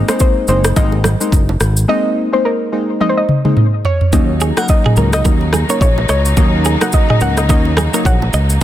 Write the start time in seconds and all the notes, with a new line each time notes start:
0.08 G#3 A#3 C4 D#4 C5, cross-stick, low bongo, shaker
0.19 C5, kick, high bongo, shaker
0.48 F#1 G#3 A#3 C4 D#4 C5, shaker
0.64 cross-stick, shaker
0.76 G#1 G#3 A#3 C4 D#4 D#5, kick, low conga, shaker
0.92 high bongo
1.04 cross-stick, low bongo, low conga, shaker
1.20 G#3 A#3 C4 D#4, shaker
1.32 F#1, kick, high bongo, shaker
1.49 low bongo
1.60 G#1, cross-stick, shaker
1.77 shaker
1.88 G#3 A#3 C4 D#4 D#5
2.32 G#3 A#3 C4 D#4 C5
2.45 A#4
2.72 G#3 A#3 C4 D#4
3.00 G#3 A#3 C4 D#4 D#5, high tom
3.09 C5
3.17 D#5
3.29 mid tom
3.45 G#3 A#3 C4 D#4, mid tom
3.57 mid tom
3.85 C#5, floor tom
4.01 floor tom
4.12 D#2 C#3 F#3 A#3 C#4 D#4, kick, low conga, shaker
4.40 G#4, shaker
4.57 F#3 A#3 C#4 D#4 A#4 F#5, cross-stick, low bongo, shaker
4.68 D#5, kick, high bongo, shaker
4.86 G#4, mid tom
4.96 C#2 F#3 A#3 C#4 D#4 A#4, shaker
5.13 D#5, cross-stick, shaker
5.25 D#2 F#3 A#3 C#4 D#4 A#4, kick, low conga, shaker
5.41 high bongo
5.53 G#4, cross-stick, low bongo, low conga, shaker
5.69 F#3 A#3 C#4 D#4 A#4 C#5, shaker
5.81 A#1 C#5, kick, high bongo, shaker
5.98 low bongo
6.09 C#2 C#5 D#5, cross-stick, shaker
6.25 shaker
6.37 D#2 F#3 A#3 C#4 D#4, kick, low conga, shaker
6.65 G#4, shaker
6.81 F#3 A#3 C#4 D#4 A#4 F#5, cross-stick, low bongo, shaker
6.92 D#5, kick, high bongo, shaker
7.10 G#4 D#5, mid tom
7.20 C#2 F#3 A#3 C#4 D#4 A#4 F#5, shaker
7.37 D#5, cross-stick, shaker
7.49 D#2 F#3 A#3 C#4 D#4 A#4 D#5, kick, low conga, shaker
7.65 high bongo
7.77 G#4, cross-stick, low bongo, low conga, shaker
7.93 F#3 A#3 C#4 D#4 A#4, shaker
8.05 A#1 C#5 F#5, kick, high bongo, shaker
8.22 low bongo
8.33 C#2 D#5, shaker
8.50 shaker